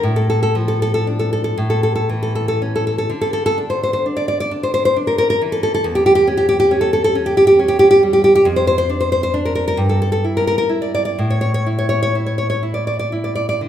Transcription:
0.03 A2
0.16 A4
0.30 A4
0.43 A4
0.55 F3
0.68 A4
0.82 A4
0.94 A4
1.07 D4
1.19 A4
1.33 A4
1.44 A4
1.58 A2
1.70 A4
1.83 A4
1.96 A4
2.09 E3
2.23 A4
2.35 A4
2.48 A4
2.62 C#4
2.76 A4
2.87 A4
2.98 A4
3.10 D3
3.21 A4
3.33 A4
3.46 A4
3.58 D4
3.70 C5
3.83 C5
3.93 C5
4.06 D4
4.17 D5
4.28 D5
4.40 D5
4.51 D4
4.63 C5
4.74 C5
4.85 C5
4.96 D4
5.07 A#4
5.18 A#4
5.30 A#4
5.42 E3
5.52 A4
5.63 A4
5.74 A4
5.84 E2
5.95 G4
6.06 G4
6.15 G4
6.27 C#4
6.37 G4
6.49 G4
6.60 G4
6.71 C#4
6.81 A4
6.93 A4
7.04 A4
7.15 C#4
7.26 G4
7.37 G4
7.47 G4
7.59 C#4
7.68 G4
7.79 G4
7.91 G4
8.03 G3
8.13 G4
8.24 G4
8.35 G4
8.45 F2
8.56 C5
8.67 C5
8.78 C5
8.89 D4
9.01 C5
9.12 C5
9.23 C5
9.34 D4
9.45 A#4
9.55 A#4
9.68 A#4
9.77 G2
9.89 A4
10.02 A4
10.12 A4
10.24 E4
10.37 A#4
10.47 A#4
10.58 A#4
10.69 E4
10.82 D5
10.95 D5
11.05 D5
11.18 A2
11.30 C#5
11.41 C#5
11.54 C#5
11.66 E4
11.79 C#5
11.89 C#5
12.03 C#5
12.15 E4
12.26 C#5
12.38 C#5
12.50 C#5
12.63 E4
12.74 D5
12.87 D5
12.99 D5
13.12 E4
13.24 D5
13.35 D5
13.49 D5
13.61 D3

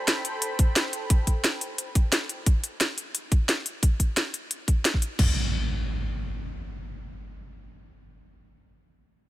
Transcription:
Already playing: A4 C5 G5 B5
0.08 snare, closed hi-hat
0.25 closed hi-hat
0.42 closed hi-hat
0.59 kick, closed hi-hat
0.76 snare, closed hi-hat
0.93 closed hi-hat
1.10 kick, closed hi-hat
1.27 kick, closed hi-hat
1.44 snare, closed hi-hat
1.61 closed hi-hat
1.78 closed hi-hat
1.95 kick, closed hi-hat
2.12 snare, closed hi-hat
2.29 closed hi-hat
2.46 kick, closed hi-hat
2.64 closed hi-hat
2.81 snare, closed hi-hat
2.98 closed hi-hat
3.15 closed hi-hat
3.32 kick, closed hi-hat
3.49 snare, closed hi-hat
3.66 closed hi-hat
3.83 kick, closed hi-hat
4.00 kick, closed hi-hat
4.17 snare, closed hi-hat
4.34 closed hi-hat
4.51 closed hi-hat
4.68 kick, closed hi-hat
4.85 snare, closed hi-hat
4.94 kick
5.02 closed hi-hat
5.19 kick, crash, impact

